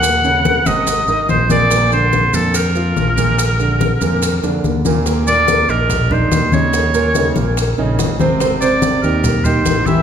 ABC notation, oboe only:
X:1
M:4/4
L:1/8
Q:1/4=143
K:Bb
V:1 name="Oboe"
_g3 e3 c d- | d c2 A B4- | B6 z2 | [K:Eb] z d2 B2 c2 _d- |
_d3 z4 z | z d2 B2 c2 _f |]